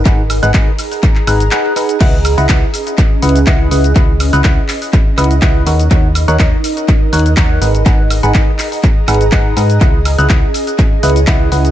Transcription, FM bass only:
X:1
M:4/4
L:1/16
Q:"Swing 16ths" 1/4=123
K:C#dor
V:1 name="FM bass" clef=bass
G,,,3 G,,, G,,, z4 z G,,,2 z4 | C,,3 C,, C,, z4 z C,,2 C,,2 C,,2 | C,,3 C,, C,, z4 z C,,2 C,,2 D,,2 | D,,3 D,, D,, z4 z D,,2 D,,2 G,,,2 |
G,,,3 G,,, z6 G,,,2 G,,,2 G,,2 | C,,3 C,, C,, z4 z C,,2 C,,2 C,,2 |]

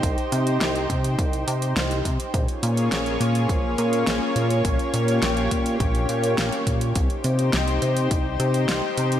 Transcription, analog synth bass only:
X:1
M:4/4
L:1/8
Q:1/4=104
K:Cphr
V:1 name="Analog synth bass" clef=bass
C,, C, C,, C, C,, C, C,, C, | B,,, B,, B,,, B,, B,,, B,, B,,, B,, | B,,, B,, B,,, B,, B,,, B,, B,,, B,, | C,, C, C,, C, C,, C, C,, C, |]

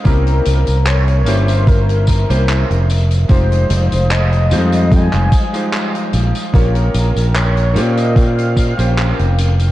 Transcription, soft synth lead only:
X:1
M:4/4
L:1/16
Q:"Swing 16ths" 1/4=74
K:Bbdor
V:1 name="Soft synth lead"
B4 d3 c B6 z2 | c4 e4 a4 z4 | B4 d3 e f6 z2 |]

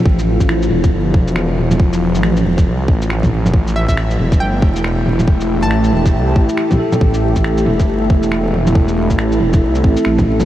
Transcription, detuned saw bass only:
X:1
M:4/4
L:1/16
Q:"Swing 16ths" 1/4=138
K:Am
V:1 name="Detuned saw bass" clef=bass
A,,,3 A,,,3 E,,,2 G,,,2 E,,,6- | E,,,3 A,,,3 E,,,2 C,,2 A,,,4- A,,, E,,, | A,,,3 A,,,3 E,,,2 G,,,2 E,,,6- | E,,,3 A,,,3 E,,,2 C,,2 A,,, z4 z |
A,,,3 A,,,3 E,,,2 G,,,2 E,,,6- | E,,,3 A,,,3 E,,,2 C,,2 A,,, z A,,,4 |]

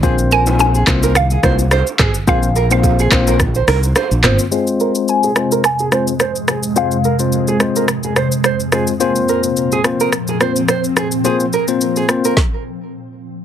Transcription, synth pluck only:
X:1
M:4/4
L:1/16
Q:"Swing 16ths" 1/4=107
K:Fm
V:1 name="Synth pluck"
z2 a2 a4 f8 | f3 f4 z8 z | z4 a4 a8 | f12- f2 z2 |
z16 | z16 |]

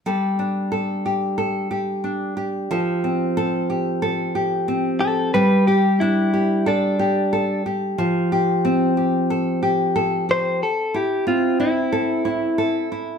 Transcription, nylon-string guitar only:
X:1
M:4/4
L:1/8
Q:"Swing 16ths" 1/4=91
K:Gmix
V:1 name="Nylon-string guitar"
[G,A] D A G A G D G | [F,A] C A G A G C G | G, G D G A G A G | F, G C G A G A G |
z E C E A E A E |]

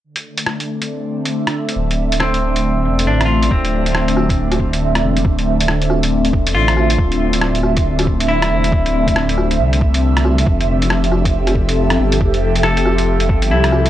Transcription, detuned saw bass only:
X:1
M:4/4
L:1/8
Q:"Swing 16ths" 1/4=138
K:Dm
V:1 name="Detuned saw bass" clef=bass
z8 | D,,,4- D,,, E,,, A,,,2 | D,,,6- D,,, E,,, | D,,,4- D,,, E,,, A,,,2 |
D,,,6- D,,, E,,, | D,,,4 C,,4 | F,,,6- F,,, G,,, | F,,,4- F,,, G,,, C,,2 |]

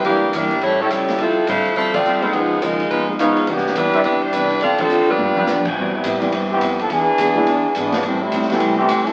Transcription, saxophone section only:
X:1
M:4/4
L:1/8
Q:"Swing" 1/4=210
K:C
V:1 name="Saxophone section"
[E,_B,DG]2 [G,DE_B]2 [A,EG^c] [G,^CEA] [G,A,CE]2 | [F,CEA]2 [A,EFc]2 [A,EFc] [CFAd]2 [A,EFc] | [F,_C_E_A]2 [_A,EF_B]2 [A,EF_c] z [F,A,CE]2 | [E,B,DG]2 [G,DEB]2 [G,DEB] [G,DEc] [G,DEB]2 |
[CFAd] [F,CDA]2 [G,DFB]4 z | z8 | z8 | z8 |]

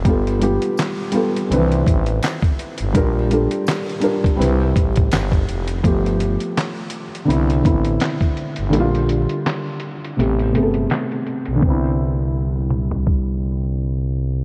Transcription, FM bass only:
X:1
M:4/4
L:1/16
Q:"Swing 16ths" 1/4=83
K:C
V:1 name="FM bass" clef=bass
G,,,3 z4 z C,,2 A,,,2 z3 G,,, | _B,,,3 z4 z C,,2 A,,,2 G,,,2 F,,,2 | G,,,3 z4 z C,,2 A,,,2 z3 G,,, | _B,,,3 z4 z A,,,2 G,,,2 z3 =B,,, |
C,,16 |]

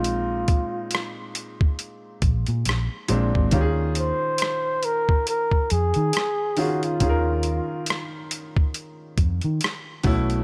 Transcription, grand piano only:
X:1
M:4/4
L:1/8
Q:"Swing 16ths" 1/4=69
K:Bbm
V:1 name="Grand piano"
[B,,A,CE]3 z4 [B,,A,C=D] | [E,DF=GA]4 z3 [E,DFA] | [E,DFAB]4 z3 [=B,,=A,^C=E] |]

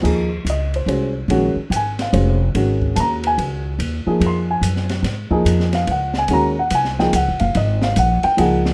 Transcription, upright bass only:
X:1
M:3/4
L:1/8
Q:"Swing" 1/4=144
K:Ebdor
V:1 name="Upright bass" clef=bass
E,,2 D,,2 C,,2 | B,,, z A,,,2 F,,,2 | A,,,2 E,,2 D,,2 | E,, z F,,2 G,,2 |
A,, z F,,2 D,,2 | E,,2 C,,2 (3D,, A,,, G,,, | A,,,2 B,,, z D,,2 |]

